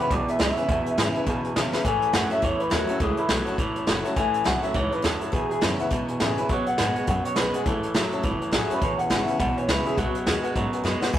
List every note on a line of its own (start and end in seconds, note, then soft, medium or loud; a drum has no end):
0.00 0.11 C#4 medium
0.00 0.10 E4 medium
0.00 0.12 B4 medium
0.11 0.27 B1 medium
0.11 0.38 E2 medium
0.11 0.66 B2 medium
0.11 0.40 B2 medium
0.11 0.28 D5 medium
0.11 0.21 G#5 medium
0.11 kick loud
0.11 closed hi-hat medium
0.27 0.35 B4 medium
0.27 0.35 E5 medium
0.27 0.39 E5 medium
0.27 0.35 G#5 medium
0.27 muted upright bass stroke medium
0.27 closed hi-hat medium
0.38 0.56 C#2 loud
0.38 0.66 E2 medium
0.38 0.67 C#3 medium
0.38 0.56 E3 medium
0.38 0.56 G#3 medium
0.38 0.57 C#4 medium
0.38 0.56 E4 medium
0.38 0.49 B4 medium
0.38 1.25 E5 loud
0.38 0.50 G#5 medium
0.38 snare loud
0.38 closed hi-hat medium
0.56 0.69 C#4 medium
0.56 0.68 E4 medium
0.56 0.63 B4 loud
0.56 0.64 E5 medium
0.56 0.64 G#5 loud
0.56 muted upright bass stroke medium
0.56 closed hi-hat medium
0.68 0.97 E2 medium
0.68 0.85 E2 medium
0.68 1.24 E2 medium
0.68 0.98 B2 loud
0.68 0.79 B4 medium
0.68 0.79 E5 medium
0.68 0.79 G#5 loud
0.68 kick loud
0.68 closed hi-hat medium
0.86 0.93 B4 medium
0.86 0.93 E5 medium
0.86 0.93 G#5 loud
0.86 muted upright bass stroke medium
0.86 closed hi-hat medium
0.97 1.24 E2 medium
0.97 1.14 G#2 loud
0.97 1.25 C#3 medium
0.97 1.14 E3 medium
0.97 1.15 G#3 medium
0.97 1.15 C#4 medium
0.97 1.13 E4 medium
0.97 1.08 B4 medium
0.97 1.08 G#5 loud
0.97 snare loud
0.97 closed hi-hat medium
1.14 1.27 C#4 soft
1.14 1.26 E4 medium
1.14 1.22 B4 loud
1.14 1.22 E5 loud
1.14 1.22 G#5 loud
1.14 muted upright bass stroke medium
1.14 closed hi-hat medium
1.26 1.55 E2 medium
1.26 1.82 B2 medium
1.26 1.56 B2 medium
1.26 1.44 C#3 medium
1.26 1.37 E5 medium
1.26 1.37 G#5 medium
1.26 kick loud
1.26 closed hi-hat medium
1.44 1.51 B4 medium
1.44 1.51 E5 medium
1.44 1.52 G#5 medium
1.44 muted upright bass stroke medium
1.44 closed hi-hat medium
1.55 1.83 E2 medium
1.55 1.73 B2 medium
1.55 1.83 C#3 medium
1.55 1.73 E3 medium
1.55 1.73 G#3 medium
1.55 1.73 C#4 medium
1.55 1.71 E4 medium
1.55 1.66 B4 medium
1.55 1.66 G#5 medium
1.55 snare loud
1.55 closed hi-hat medium
1.72 1.85 C#4 soft
1.72 1.84 E4 medium
1.72 1.79 B4 loud
1.72 1.80 E5 loud
1.72 1.80 B5 loud
1.72 muted upright bass stroke medium
1.72 snare medium
1.84 2.02 A2 medium
1.84 2.14 A2 medium
1.84 2.41 A2 medium
1.84 2.15 E3 medium
1.84 1.95 C#5 medium
1.84 1.95 E5 medium
1.84 2.13 G#5 loud
1.84 1.96 A5 loud
1.84 kick loud
1.84 closed hi-hat loud
2.01 2.08 C#5 medium
2.01 2.09 E5 medium
2.01 2.09 A5 medium
2.01 muted upright bass stroke medium
2.01 closed hi-hat medium
2.13 2.30 F#2 medium
2.13 2.41 A2 medium
2.13 2.30 E3 medium
2.13 2.41 F#3 medium
2.13 2.31 A3 medium
2.13 2.31 C#4 medium
2.13 2.29 F#4 medium
2.13 2.24 C#5 medium
2.13 2.24 E5 medium
2.13 2.31 F#5 loud
2.13 snare loud
2.13 closed hi-hat medium
2.30 2.43 C#4 soft
2.30 2.42 F#4 medium
2.30 2.38 C#5 medium
2.30 2.42 E5 medium
2.30 2.38 E5 medium
2.30 2.39 A5 loud
2.30 muted upright bass stroke medium
2.30 closed hi-hat medium
2.42 2.98 E2 medium
2.42 2.60 E2 medium
2.42 2.71 A2 medium
2.42 2.72 E3 medium
2.42 2.53 C#5 medium
2.42 2.60 C#5 medium
2.42 2.54 A5 medium
2.42 kick loud
2.42 closed hi-hat medium
2.59 2.71 B4 loud
2.59 2.67 C#5 medium
2.59 2.67 E5 medium
2.59 2.67 A5 medium
2.59 muted upright bass stroke medium
2.59 closed hi-hat medium
2.70 2.89 D#2 loud
2.70 2.99 A2 medium
2.70 2.88 E3 medium
2.70 2.99 F#3 medium
2.70 2.88 A3 medium
2.70 2.89 C#4 medium
2.70 2.86 F#4 loud
2.70 2.89 A#4 medium
2.70 2.82 C#5 medium
2.70 2.83 A5 medium
2.70 snare loud
2.70 closed hi-hat medium
2.87 3.01 C#4 medium
2.87 2.99 F#4 medium
2.87 3.01 A4 medium
2.87 2.95 C#5 loud
2.87 2.96 E5 medium
2.87 2.96 A5 loud
2.87 muted upright bass stroke medium
2.87 closed hi-hat medium
2.99 3.17 C#2 medium
2.99 3.56 A2 medium
2.99 3.29 A2 medium
2.99 3.30 E3 loud
2.99 3.18 G#4 medium
2.99 3.11 C#5 loud
2.99 3.11 E5 medium
2.99 3.11 B5 loud
2.99 kick loud
2.99 closed hi-hat medium
3.17 3.30 E4 loud
3.17 3.24 C#5 medium
3.17 3.25 E5 medium
3.17 3.25 A5 medium
3.17 muted upright bass stroke medium
3.17 closed hi-hat medium
3.28 3.46 B1 loud
3.28 3.57 A2 medium
3.28 3.46 E3 medium
3.28 3.57 F#3 loud
3.28 3.47 A3 medium
3.28 3.47 C#4 medium
3.28 3.45 F#4 medium
3.28 3.40 C#5 medium
3.28 3.40 E5 medium
3.28 snare loud
3.28 closed hi-hat medium
3.46 3.59 C#4 medium
3.46 3.58 F#4 medium
3.46 3.53 C#5 loud
3.46 3.54 E5 loud
3.46 3.54 A5 loud
3.46 muted upright bass stroke medium
3.46 closed hi-hat medium
3.58 3.75 E1 medium
3.58 4.15 E2 loud
3.58 3.87 A2 medium
3.58 3.88 E3 medium
3.58 3.69 C#5 medium
3.58 3.69 E5 medium
3.58 3.70 A5 loud
3.58 kick loud
3.58 closed hi-hat medium
3.76 3.83 C#5 medium
3.76 3.83 E5 medium
3.76 3.84 A5 medium
3.76 muted upright bass stroke soft
3.76 closed hi-hat medium
3.87 4.05 F#1 medium
3.87 4.15 A2 medium
3.87 4.04 E3 medium
3.87 4.15 F#3 loud
3.87 4.05 A3 medium
3.87 4.05 C#4 medium
3.87 4.03 F#4 medium
3.87 3.99 A5 medium
3.87 snare loud
3.87 closed hi-hat medium
4.03 4.17 C#4 soft
4.03 4.16 F#4 medium
4.03 4.11 C#5 loud
4.03 4.12 E5 loud
4.03 4.12 A5 loud
4.03 muted upright bass stroke medium
4.03 closed hi-hat medium
4.16 4.33 A1 medium
4.16 4.44 A2 medium
4.16 4.73 A2 medium
4.16 4.46 E3 medium
4.16 4.27 E5 medium
4.16 4.45 G#5 medium
4.16 kick loud
4.16 closed hi-hat medium
4.33 4.41 C#5 medium
4.33 4.41 E5 medium
4.33 4.42 A5 medium
4.33 muted upright bass stroke soft
4.33 closed hi-hat medium
4.44 4.63 B1 loud
4.44 4.73 A2 medium
4.44 4.62 E3 medium
4.44 4.73 F#3 loud
4.44 4.62 A3 medium
4.44 4.63 C#4 medium
4.44 4.61 F#4 medium
4.44 4.56 C#5 medium
4.44 4.56 E5 medium
4.44 4.63 F#5 loud
4.44 snare loud
4.44 closed hi-hat medium
4.62 4.75 C#4 medium
4.62 4.74 F#4 medium
4.62 4.70 C#5 medium
4.62 4.70 E5 medium
4.62 4.75 E5 medium
4.62 4.70 A5 loud
4.62 muted upright bass stroke medium
4.62 closed hi-hat medium
4.74 4.92 C#2 medium
4.74 5.02 G#2 medium
4.74 5.03 A2 medium
4.74 5.04 E3 loud
4.74 4.85 C#5 medium
4.74 4.92 C#5 medium
4.74 4.85 E5 medium
4.74 4.86 A5 medium
4.74 kick loud
4.74 closed hi-hat medium
4.91 5.03 B4 medium
4.91 4.99 C#5 medium
4.91 4.99 E5 medium
4.91 4.99 A5 medium
4.91 muted upright bass stroke medium
4.91 closed hi-hat medium
5.02 5.21 D#2 medium
5.02 5.31 F#2 medium
5.02 5.31 A2 medium
5.02 5.31 F#3 loud
5.02 5.21 A4 medium
5.02 5.14 C#5 medium
5.02 5.14 E5 medium
5.02 5.14 A5 medium
5.02 snare loud
5.02 closed hi-hat medium
5.20 5.33 A4 medium
5.20 5.28 C#5 loud
5.20 5.28 E5 loud
5.20 5.28 A5 loud
5.20 muted upright bass stroke medium
5.20 closed hi-hat medium
5.31 5.88 E2 medium
5.31 5.49 E2 medium
5.31 5.61 E2 medium
5.31 5.62 B2 medium
5.31 5.49 G#4 medium
5.31 5.43 B4 loud
5.31 5.43 E5 medium
5.31 5.43 G#5 loud
5.31 kick loud
5.31 closed hi-hat medium
5.49 5.61 G#4 loud
5.49 5.57 B4 medium
5.49 5.57 E5 medium
5.49 5.58 G#5 medium
5.49 muted upright bass stroke soft
5.49 closed hi-hat medium
5.61 5.89 E2 medium
5.61 5.80 F#2 loud
5.61 5.89 C#3 medium
5.61 5.78 E3 medium
5.61 5.79 G#3 medium
5.61 5.79 C#4 medium
5.61 5.78 E4 medium
5.61 5.72 B4 medium
5.61 snare loud
5.61 closed hi-hat medium
5.79 5.92 C#4 medium
5.79 5.91 E4 medium
5.79 5.86 B4 loud
5.79 5.87 E5 loud
5.79 5.87 F#5 loud
5.79 muted upright bass stroke medium
5.79 closed hi-hat medium
5.91 6.19 E2 medium
5.91 6.07 G#2 medium
5.91 6.47 B2 medium
5.91 6.21 B2 loud
5.91 6.02 B4 medium
5.91 6.02 E5 medium
5.91 kick loud
5.91 closed hi-hat medium
6.08 6.15 B4 medium
6.08 6.16 E5 medium
6.08 6.16 G#5 medium
6.08 muted upright bass stroke soft
6.08 closed hi-hat medium
6.20 6.47 E2 medium
6.20 6.38 A2 medium
6.20 6.47 C#3 medium
6.20 6.37 E3 medium
6.20 6.37 G#3 medium
6.20 6.37 C#4 medium
6.20 6.36 E4 loud
6.20 6.37 G#4 loud
6.20 6.31 G#5 medium
6.20 snare loud
6.20 closed hi-hat medium
6.37 6.50 C#4 soft
6.37 6.49 E4 medium
6.37 6.45 B4 loud
6.37 6.49 B4 medium
6.37 6.45 E5 medium
6.37 6.45 G#5 loud
6.37 muted upright bass stroke medium
6.37 closed hi-hat medium
6.49 7.05 B2 medium
6.49 6.66 B2 medium
6.49 6.78 B2 medium
6.49 6.79 F#3 loud
6.49 6.60 B4 loud
6.49 6.67 C#5 medium
6.49 6.60 D#5 medium
6.49 6.60 F#5 loud
6.49 kick loud
6.49 closed hi-hat medium
6.66 6.73 B4 medium
6.66 6.74 D#5 medium
6.66 7.06 F#5 loud
6.66 6.74 F#5 medium
6.66 muted upright bass stroke medium
6.66 closed hi-hat medium
6.78 6.96 G#2 loud
6.78 7.05 B2 medium
6.78 6.95 D#3 medium
6.78 6.95 G#3 medium
6.78 7.06 G#3 medium
6.78 6.96 B3 medium
6.78 6.95 F#4 medium
6.78 6.89 D#5 medium
6.78 6.90 F#5 medium
6.78 snare loud
6.78 closed hi-hat medium
6.95 7.08 B3 soft
6.95 7.07 F#4 medium
6.95 7.03 B4 loud
6.95 7.03 D#5 medium
6.95 7.03 F#5 loud
6.95 muted upright bass stroke medium
6.95 closed hi-hat medium
7.07 7.24 F#2 medium
7.07 7.63 F#2 medium
7.07 7.36 B2 medium
7.07 7.38 F#3 medium
7.07 7.18 B4 medium
7.07 7.18 D#5 medium
7.07 7.24 F#5 medium
7.07 7.18 G#5 medium
7.07 kick loud
7.07 closed hi-hat medium
7.24 7.32 B4 medium
7.24 7.37 C#5 medium
7.24 7.32 D#5 medium
7.24 7.33 F#5 medium
7.24 muted upright bass stroke medium
7.24 closed hi-hat medium
7.36 7.53 B1 medium
7.36 7.64 B2 medium
7.36 7.53 D#3 medium
7.36 7.53 G#3 medium
7.36 7.64 G#3 loud
7.36 7.54 B3 medium
7.36 7.52 F#4 medium
7.36 7.47 B4 medium
7.36 7.54 B4 medium
7.36 7.47 D#5 medium
7.36 7.48 F#5 medium
7.36 snare loud
7.36 closed hi-hat medium
7.53 7.66 B3 soft
7.53 7.65 F#4 medium
7.53 7.67 G#4 medium
7.53 7.61 B4 loud
7.53 7.61 D#5 medium
7.53 7.62 F#5 loud
7.53 muted upright bass stroke soft
7.53 closed hi-hat medium
7.65 7.83 A1 medium
7.65 8.21 A2 medium
7.65 7.94 A2 medium
7.65 7.95 E3 medium
7.65 7.83 A4 loud
7.65 7.76 C#5 loud
7.65 7.76 E5 medium
7.65 7.77 A5 loud
7.65 kick loud
7.65 closed hi-hat loud
7.83 7.90 C#5 medium
7.83 7.90 E5 medium
7.83 7.91 A5 medium
7.83 muted upright bass stroke medium
7.83 closed hi-hat medium
7.94 8.12 G#1 loud
7.94 8.22 A2 medium
7.94 8.11 E3 medium
7.94 8.22 F#3 loud
7.94 8.12 A3 medium
7.94 8.12 C#4 medium
7.94 8.10 F#4 medium
7.94 8.05 C#5 medium
7.94 8.06 E5 medium
7.94 8.06 A5 medium
7.94 snare loud
7.94 closed hi-hat medium
8.11 8.24 C#4 soft
8.11 8.23 F#4 medium
8.11 8.19 C#5 loud
8.11 8.20 E5 loud
8.11 8.20 A5 loud
8.11 muted upright bass stroke soft
8.11 closed hi-hat medium
8.23 8.41 F#1 medium
8.23 8.79 E2 medium
8.23 8.52 A2 medium
8.23 8.53 E3 loud
8.23 8.34 C#5 medium
8.23 8.34 E5 medium
8.23 8.35 A5 loud
8.23 kick loud
8.23 closed hi-hat medium
8.41 8.48 C#5 medium
8.41 8.48 E5 medium
8.41 8.49 A5 loud
8.41 muted upright bass stroke medium
8.41 closed hi-hat medium
8.51 8.69 A1 medium
8.51 8.80 A2 medium
8.51 8.69 E3 medium
8.51 8.80 F#3 loud
8.51 8.69 A3 medium
8.51 8.70 C#4 medium
8.51 8.69 F#4 medium
8.51 8.71 G#4 medium
8.51 8.63 C#5 medium
8.51 8.64 E5 medium
8.51 snare loud
8.51 closed hi-hat medium
8.69 8.82 C#4 medium
8.69 8.81 F#4 medium
8.69 8.82 B4 medium
8.69 8.77 C#5 loud
8.69 8.78 E5 medium
8.69 8.78 A5 loud
8.69 muted upright bass stroke medium
8.69 closed hi-hat medium
8.81 8.97 E1 medium
8.81 9.10 E2 medium
8.81 9.38 E2 medium
8.81 9.11 B2 medium
8.81 8.92 B4 medium
8.81 8.98 C#5 medium
8.81 8.92 E5 medium
8.81 8.93 G#5 loud
8.81 kick loud
8.81 closed hi-hat medium
8.98 9.06 B4 medium
8.98 9.06 E5 medium
8.98 9.38 F#5 loud
8.98 9.07 G#5 medium
8.98 muted upright bass stroke soft
8.98 closed hi-hat medium
9.09 9.26 G#1 loud
9.09 9.38 E2 medium
9.09 9.38 C#3 medium
9.09 9.27 E3 medium
9.09 9.28 G#3 medium
9.09 9.28 C#4 medium
9.09 9.26 E4 medium
9.09 9.21 B4 medium
9.09 9.22 G#5 medium
9.09 snare loud
9.09 closed hi-hat medium
9.27 9.40 C#4 soft
9.27 9.39 E4 medium
9.27 9.35 B4 medium
9.27 9.35 E5 medium
9.27 9.35 G#5 loud
9.27 muted upright bass stroke medium
9.27 closed hi-hat medium
9.39 9.55 B1 medium
9.39 9.68 E2 medium
9.39 9.96 B2 loud
9.39 9.69 B2 loud
9.39 9.50 E5 medium
9.39 9.57 F#5 medium
9.39 kick loud
9.39 closed hi-hat medium
9.56 9.64 B4 medium
9.56 9.69 C#5 medium
9.56 9.64 E5 medium
9.56 9.65 G#5 medium
9.56 muted upright bass stroke medium
9.56 closed hi-hat medium
9.68 9.84 C#2 medium
9.68 9.96 E2 medium
9.68 9.96 C#3 loud
9.68 9.86 E3 medium
9.68 9.86 G#3 medium
9.68 9.86 C#4 medium
9.68 9.84 E4 loud
9.68 9.79 B4 medium
9.68 9.86 B4 medium
9.68 9.80 G#5 medium
9.68 snare loud
9.68 closed hi-hat medium
9.85 9.98 C#4 soft
9.85 9.97 E4 medium
9.85 9.98 G#4 medium
9.85 9.93 B4 loud
9.85 9.93 E5 medium
9.85 9.93 G#5 loud
9.85 muted upright bass stroke medium
9.85 closed hi-hat medium
9.95 10.13 B1 medium
9.95 10.26 B2 medium
9.95 10.54 B2 medium
9.95 10.27 F#3 loud
9.95 10.15 F#4 medium
9.95 10.07 B4 medium
9.95 10.08 D#5 medium
9.95 10.08 F#5 loud
9.95 kick loud
9.95 closed hi-hat loud
10.14 10.22 B4 medium
10.14 10.22 D#5 medium
10.14 10.22 F#5 medium
10.14 muted upright bass stroke medium
10.14 closed hi-hat medium
10.25 10.42 D#2 loud
10.25 10.54 B2 medium
10.25 10.43 D#3 medium
10.25 10.44 G#3 medium
10.25 10.54 G#3 medium
10.25 10.44 B3 medium
10.25 10.42 F#4 medium
10.25 10.37 B4 medium
10.25 10.37 D#5 medium
10.25 10.37 F#5 loud
10.25 snare loud
10.25 closed hi-hat medium
10.42 10.55 F#4 medium
10.42 10.50 B4 loud
10.42 10.51 D#5 loud
10.42 10.51 F#5 loud
10.42 muted upright bass stroke medium
10.42 closed hi-hat medium
10.46 10.56 B3 medium
10.55 11.12 F#2 medium
10.55 10.72 G#2 medium
10.55 10.84 B2 medium
10.55 10.85 F#3 medium
10.55 10.66 F#5 loud
10.55 kick loud
10.55 closed hi-hat medium
10.72 10.80 B4 medium
10.72 10.80 D#5 medium
10.72 10.80 F#5 loud
10.72 10.77 G#5 medium
10.72 muted upright bass stroke medium
10.72 closed hi-hat medium
10.78 10.84 G#5 medium
10.83 11.00 F#2 medium
10.83 11.12 B2 medium
10.83 11.01 D#3 medium
10.83 11.01 G#3 medium
10.83 11.12 G#3 loud
10.83 11.02 B3 medium
10.83 11.00 F#4 medium
10.83 10.95 B4 medium
10.83 10.95 F#5 medium
10.83 snare medium
11.00 11.14 B3 medium
11.00 11.13 F#4 medium
11.00 11.08 B4 loud
11.00 11.09 D#5 loud
11.00 11.09 F#5 loud
11.00 muted upright bass stroke medium
11.00 snare medium
11.12 11.19 E2 medium
11.12 11.19 B2 medium
11.12 11.19 B4 loud
11.12 11.19 E5 loud
11.12 11.19 G#5 loud
11.12 kick loud
11.12 ride medium